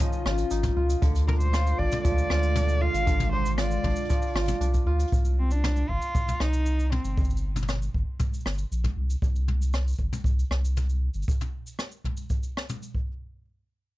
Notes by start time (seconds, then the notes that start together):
Already playing: C#3 D#3 C#4 D#4 F4
0.00 F3, kick, cabasa
0.13 cabasa
0.26 G#1 F4, cross-stick
0.38 closed hi-hat, cabasa
0.51 G#1 D#4, closed hi-hat, cabasa
0.63 kick, closed hi-hat, mid tom, cabasa
0.76 C#2 F4
0.89 closed hi-hat, cabasa
1.02 D2 D3 G#3, kick, closed hi-hat, cabasa
1.15 closed hi-hat, cabasa
1.27 D4 A#4, mid tom
1.40 C5, cabasa
1.53 F4, cross-stick, closed hi-hat, cabasa
1.66 closed hi-hat, cabasa
1.78 G#1 D4 D5, kick
1.92 closed hi-hat, mid tom, cabasa
2.04 D2 F3 D5, kick, closed hi-hat, cabasa
2.18 cabasa
2.30 D2 F4, cross-stick
2.43 closed hi-hat, cabasa
2.50 closed hi-hat
2.56 D4, closed hi-hat, mid tom, cabasa
2.62 closed hi-hat
2.68 closed hi-hat, cabasa
2.81 F4 F5
2.94 G#1, closed hi-hat, cabasa
3.06 D3, kick, closed hi-hat, cabasa
3.20 closed hi-hat, mid tom, cabasa
3.33 D4 C5
3.45 closed hi-hat, cabasa
3.58 F4 D5, cross-stick, closed hi-hat, cabasa
3.70 closed hi-hat, cabasa
3.77 closed hi-hat
3.83 G#1 D4, kick, closed hi-hat, mid tom
3.89 closed hi-hat
3.96 closed hi-hat, cabasa
4.00 closed hi-hat
4.05 closed hi-hat
4.10 F3, kick, closed hi-hat, cabasa
4.22 closed hi-hat, cabasa
4.27 closed hi-hat
4.30 closed hi-hat
4.33 G#1 F4, cross-stick, closed hi-hat
4.36 closed hi-hat
4.39 closed hi-hat
4.43 closed hi-hat
4.46 closed hi-hat, mid tom
4.48 closed hi-hat, cabasa
4.60 C2 D4, closed hi-hat, cabasa
4.74 kick, closed hi-hat, cabasa
4.86 D2 F4
4.99 closed hi-hat, cabasa
5.07 closed hi-hat
5.12 C2, kick, closed hi-hat, cabasa
5.25 cabasa
5.39 C4
5.51 D4, cabasa
5.64 cross-stick, mid tom, cabasa
5.76 cabasa
5.89 G1 F4, kick
6.02 cabasa
6.15 C2, kick, cabasa
6.28 mid tom, cabasa
6.40 C2 D#4, cross-stick
6.53 cabasa
6.66 cabasa
6.80 cabasa
6.92 C4, mid tom
7.04 G1, cabasa
7.17 kick, cabasa
7.24 cabasa
7.30 cabasa
7.37 cabasa
7.56 mid tom, cabasa
7.62 mid tom
7.68 cross-stick, mid tom, cabasa
7.75 mid tom
7.82 cabasa
7.94 G1, kick
8.19 kick, mid tom, cabasa
8.34 cabasa
8.40 cabasa
8.46 G1, cross-stick, cabasa
8.53 cabasa
8.58 cabasa
8.72 A#1, cabasa
8.84 kick, mid tom, cabasa
8.97 C2
9.10 cabasa
9.22 C2, kick, cabasa
9.36 cabasa
9.48 mid tom
9.62 cabasa
9.73 cross-stick, cabasa
9.88 cabasa
9.90 cabasa
9.93 cabasa
9.95 cabasa
9.98 G1, kick, cabasa
10.13 mid tom, cabasa
10.24 C2, kick, cabasa
10.39 cabasa
10.50 C2, cross-stick
10.65 cabasa
10.77 mid tom, cabasa
10.89 cabasa
11.14 G1, cabasa
11.22 cabasa
11.28 kick, cabasa
11.31 cabasa
11.41 mid tom, cabasa
11.67 cabasa
11.79 cross-stick, cabasa
11.91 cabasa
12.04 kick, mid tom
12.17 cabasa
12.30 kick, cabasa
12.43 cabasa
12.57 cross-stick
12.69 mid tom, cabasa
12.83 cabasa
12.95 kick